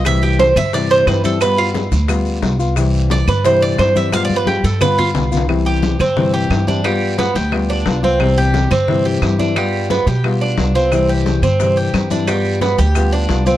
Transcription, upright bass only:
X:1
M:4/4
L:1/8
Q:1/4=177
K:C
V:1 name="Upright bass" clef=bass
C,,3 G,,3 G,,2- | G,,3 D,,3 C,,2- | C,,3 G,,3 G,,2- | G,,3 G,,3 C,,2- |
C,,3 G,,3 G,,2- | G,,3 D,,3 C,,2- | C,,3 G,,3 G,,2- | G,,3 B,,3 C,,2- |
C,,3 G,,3 G,,2- | G,,3 D,,3 C,,2 |]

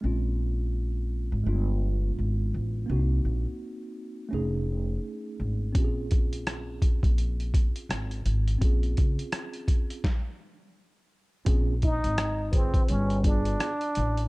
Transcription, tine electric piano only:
X:1
M:4/4
L:1/8
Q:"Swing 16ths" 1/4=84
K:Bbm
V:1 name="Tine electric piano"
[A,CDF]4 [A,=A,=B,=DF]4 | [B,C=DEG]4 [=A,^CE^G]4 | [CDF=GA]8 | [CDFA]4 z4 |
[CDFA] z2 [=D,FA_c]2 [=B,=DFA] z2 |]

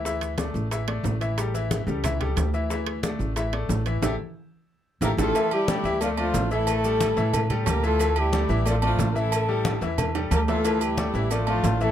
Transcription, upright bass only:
X:1
M:4/4
L:1/8
Q:1/4=181
K:Dm
V:1 name="Upright bass" clef=bass
D,,3 A,,,3 A,,,2- | A,,,3 ^C,,3 D,,2- | D,,3 A,,,3 A,,,2 | A,,, z4 z A,,, A,,, |
z3 D,,3 A,,,2- | A,,,3 A,,3 D,,2- | D,,3 A,,,3 A,,,2- | A,,,3 E,,3 D,,2- |
D,,3 A,,,3 A,,,2 |]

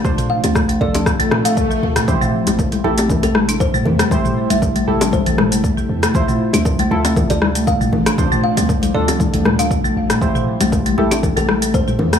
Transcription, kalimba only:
X:1
M:4/4
L:1/16
Q:"Swing 16ths" 1/4=118
K:Am
V:1 name="Kalimba"
z2 f4 d z4 f3 z2 | z8 z A z2 c z3 | z3 e z4 c4 z4 | z8 z d z2 f z3 |
z2 f4 d z4 f3 z2 | z8 z A z2 c z3 |]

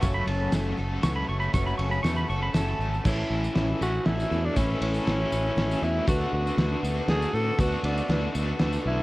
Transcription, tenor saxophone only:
X:1
M:3/4
L:1/16
Q:1/4=119
K:A
V:1 name="Tenor saxophone"
z12 | z12 | z6 F2 E3 D | C2 C8 E2 |
F2 F4 z2 G2 A2 | F2 D4 z4 E2 |]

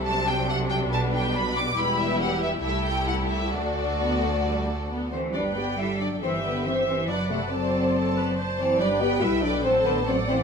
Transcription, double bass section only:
X:1
M:4/4
L:1/8
Q:1/4=139
K:G
V:1 name="Double bass section" clef=bass
C,,4 B,,,4 | E,,,4 C,,4 | D,,6- D,, z | G,,,4 G,,,4 |
F,,,8 | G,,,2 B,,,2 A,,,4 |]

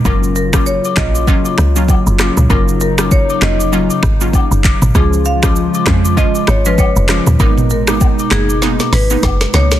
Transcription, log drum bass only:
X:1
M:4/4
L:1/16
Q:"Swing 16ths" 1/4=98
K:F#
V:1 name="Log drum bass" clef=bass
F,,,4- F,,, z A,,,3 z C,,3 F,,,2 C,, | F,,,4- F,,, z E,,,4 G,,,3 F,,,2 G,,, | C,,4- C,, z E,,3 z G,,,3 E,,,2 D,, | G,,,4- G,,, z F,,,4 G,,,2 F,,,2 C,,2 |]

